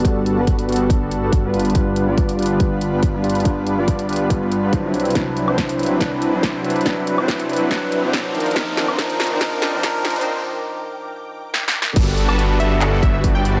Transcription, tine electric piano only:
\new Staff \with { instrumentName = "Tine electric piano" } { \time 4/4 \key g \major \tempo 4 = 141 <g b fis' a'>4. <g b fis' a'>2 r8 | <g d' f' b'>4. <g d' f' b'>2 <g d' f' d''>8 | <g d' f' b'>4. <g d' f' b'>4. <fis d' e' c''>4 | <fis d' e' b'>4. <fis d' e' b'>8 <fis d' e' b'>4. <fis d' e' b'>8 |
<fis d' e' b'>4. <fis d' e' b'>8 <fis d' e' b'>4. <f d' ees' bes'>8 | <f d' ees' bes'>4 <f d' ees' bes'>4 <f d' ees' bes'>4 <f d' ees' bes'>4 | r1 | r1 | }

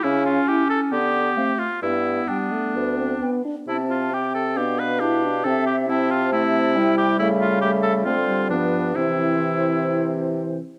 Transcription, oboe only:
\new Staff \with { instrumentName = "Oboe" } { \time 4/4 \key c \major \tempo 4 = 134 e'8 f'8 g'8 a'8 g'4. f'8 | e'4 d'2~ d'8 r8 | e'8 f'8 g'8 a'8 g'8 b'8 g'4 | a'8 g'8 e'8 f'8 e'4. g'8 |
e'8 f'8 g'8 a'8 f'4 d'4 | e'2. r4 | }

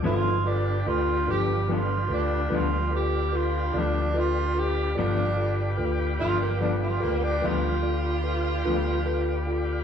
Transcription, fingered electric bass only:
\new Staff \with { instrumentName = "Fingered electric bass" } { \clef bass \time 12/8 \key g \mixolydian \tempo 4. = 49 g,,4 d,8 g,,4 d,8 d,4. d,4. | g,,4 d,8 g,,4 d,8 d,4. d,4. | }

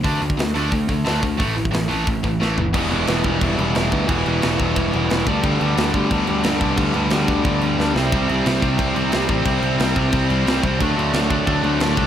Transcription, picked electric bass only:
\new Staff \with { instrumentName = "Picked electric bass" } { \clef bass \time 4/4 \key e \minor \tempo 4 = 179 d,8 d,8 d,8 d,8 d,8 d,8 d,8 d,8 | a,,4 a,,8 a,,8 a,,8 a,,8 a,,8 g,,8 | e,,8 e,,8 e,,8 e,,8 e,,8 e,,8 e,,8 d,8 | e,,8 e,,8 e,,8 e,,8 e,,8 e,,8 e,,8 d,8 |
d,8 d,8 d,8 d,8 d,8 d,8 d,8 c,8 | d,8 d,8 d,8 d,8 d,8 d,8 d,8 c,8 | c,8 c,8 c,8 c,8 c,8 c,8 c,8 a,,8 | c,8 c,8 c,8 c,8 c,8 c,8 c,8 c,8 |
d,8 d,8 d,8 d,8 d,8 d,8 d,8 c,8 | }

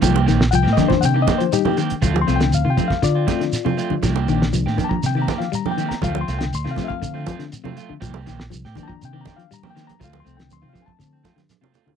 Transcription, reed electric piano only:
<<
  \new Staff \with { instrumentName = "Reed electric piano" } { \time 4/4 \key c \dorian \tempo 4 = 120 r4 \tuplet 3/2 { <fis'' g''>8 ees''8 c''8 <fis'' g''>8 ees''8 c''8 } <ees' g'>8 r8 | \tuplet 3/2 { r8 c'''8 g''8 f''8 g''8 f''8 } <f' d''>2~ | <f' d''>4 \tuplet 3/2 { r4 <a'' bes''>8 g''8 bes''8 f''8 bes''8 g''8 bes''8 } | \tuplet 3/2 { f''8 c'''8 g''8 c'''8 f''8 <e'' f''>8~ } <e'' f''>8 r4. |
r4 \tuplet 3/2 { r4 <a'' bes''>8 g''8 bes''8 f''8 bes''8 g''8 bes''8 } | \tuplet 3/2 { f''8 c'''8 g''8 c'''8 f''8 <aes'' a''>8~ } <aes'' a''>8 r4. | }
  \new Staff \with { instrumentName = "Reed electric piano" } { \time 4/4 \key c \dorian r4. <ees bes d'>2~ <ees bes d'>8 | r8 <f a c'>8 r4. <f a c'>8 r4 | r8 <ees bes d'>2.~ <ees bes d'>8 | r4. <f a c'>2~ <f a c'>8 |
r4. <ees bes d'>2~ <ees bes d'>8 | r8 <f a c'>4. <f a c'>8 r4. | }
>>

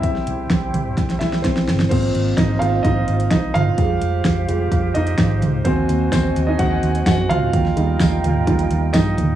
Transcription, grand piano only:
\new Staff \with { instrumentName = "Grand piano" } { \time 4/4 \key aes \major \tempo 4 = 128 << { <e' e''>2~ <e' e''>8 <e' e''>8 <c' c''>4 | c''4 <ees' ees''>8 f''8 <ees' ees''>4 <ees' ees''>8 <f' f''>8~ | <f' f''>2~ <f' f''>8 <ees' ees''>4. | c''4 <c' c''>8. <ees' ees''>16 <ges' ges''>4 <ges' ges''>8 <f' f''>8~ |
<f' f''>2. <ees' ees''>4 | } \\ { <g c' e'>8 r2. r8 | <bes c' f'>4. <bes c' f'>8 r2 | <g aes f'>8 r4 <g aes f'>8 r2 | <bes c' ges'>4. r2 r8 |
r8 <g ees' f'>4. <g ees' f'>8 r4. | } >> }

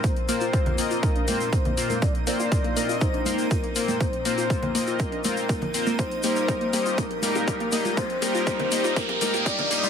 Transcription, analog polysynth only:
\new Staff \with { instrumentName = "Analog polysynth" } { \time 4/4 \key ees \lydian \tempo 4 = 121 r8 <bes c' f' bes' c''>4 <bes c' f' bes' ees''>4 <bes c' f' bes' c''>8 r8 <bes c' f' bes' c''>8 | r8 <bes c' f' bes' c''>4 <bes c' f' bes' ees''>4 <bes c' f' bes' c''>8 r8 <bes c' f' bes' c''>8 | r8 <bes c' f' bes' c''>4 <bes c' f' bes' ees''>4 <bes c' f' bes' c''>8 r8 <bes c' f' bes' c''>8 | r8 <g bes ees' g' bes'>4 <g bes ees' g' ees''>8 r8 <g bes ees' g' bes'>4 <g bes ees' g' ees''>8 |
r8 <g bes ees' g' bes'>4 <g bes ees' g' ees''>8 r8 <g bes ees' g' bes'>4 <g bes ees' g' ees''>8 | }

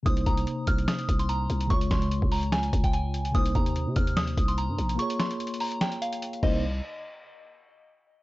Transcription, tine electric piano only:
\new Staff \with { instrumentName = "Tine electric piano" } { \time 4/4 \key c \phrygian \tempo 4 = 146 <c bes ees' c''>1 | <des aes f' des''>1 | <c bes ees' c''>1 | <bes f' aes' des''>2.~ <bes f' aes' des''>8 <c bes ees' c''>8 |
r1 | }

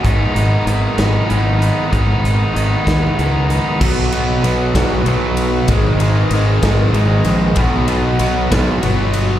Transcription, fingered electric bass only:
\new Staff \with { instrumentName = "Fingered electric bass" } { \clef bass \time 6/8 \key aes \dorian \tempo 4. = 64 aes,,8 aes,,8 aes,,8 aes,,8 aes,,4 | aes,,8 aes,,8 aes,,8 ees,8 des,4 | b,,4 b,,8 b,,8 b,,4 | aes,,4 aes,,8 aes,,8 aes,,8 bes,,8 |
b,,4 b,,8 b,,8 g,,4 | }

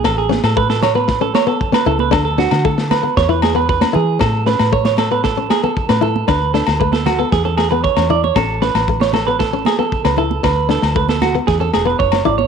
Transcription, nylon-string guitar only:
\new Staff \with { instrumentName = "Nylon-string guitar" } { \time 4/4 \key a \major \tempo 4 = 116 r8 cis'8 a8 r16 b8 cis'8 b8 cis'16 e'8 | d'8 d'8 a8 r16 b8 e'8 b8 cis'16 e'8 | cis'8 cis'8 a8 r16 b8 cis'8 b8 cis'16 e'8 | d'8 d'8 a8 r16 b8 cis'8 b8 cis'16 e'8 |
cis'8 cis'8 a8 r16 b8 cis'8 b8 cis'16 e'8 | d'8 d'8 a8 r16 b8 cis'8 b8 cis'16 e'8 | }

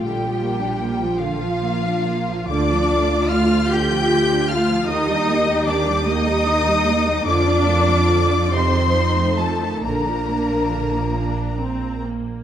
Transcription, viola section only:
\new Staff \with { instrumentName = "Viola section" } { \clef bass \time 6/8 \key bes \major \tempo 4. = 48 << { f'2. | f'2. | g'2. | f'4. ees'4. |
d'4. d'8 c'8 bes8 | } \\ { d16 f16 bes16 d'16 bes16 f16 d16 f16 bes16 d'16 bes16 f16 | d16 f16 a16 d'16 a16 f16 d16 f16 a16 d'16 a16 f16 | ees16 g16 bes16 g16 ees16 g16 bes16 g16 ees16 g16 bes16 g16 | d16 f16 bes16 f16 d16 f16 c16 ees16 f16 a16 f16 ees16 |
d16 f16 bes16 f16 d16 f16 r4. | } >> }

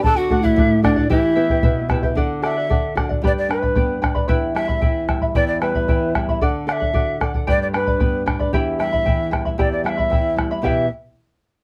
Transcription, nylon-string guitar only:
\new Staff \with { instrumentName = "Nylon-string guitar" } { \clef bass \time 2/4 \key e \minor \tempo 4 = 113 d8 <a d' fis'>8 a,8 <a d' fis'>8 | e8 <b e' g'>8 b,8 <b e' g'>8 | d8 fis'8 d'8 fis'8 | g,8 d'8 b8 d'8 |
e,8 g8 e8 g8 | e,8 g8 e8 g8 | d8 a'8 fis'8 a'8 | g,8 d'8 b8 d'8 |
e,8 g8 e8 g8 | e,8 g8 e8 g8 | <e, b, e b g' b'>8 r4. | }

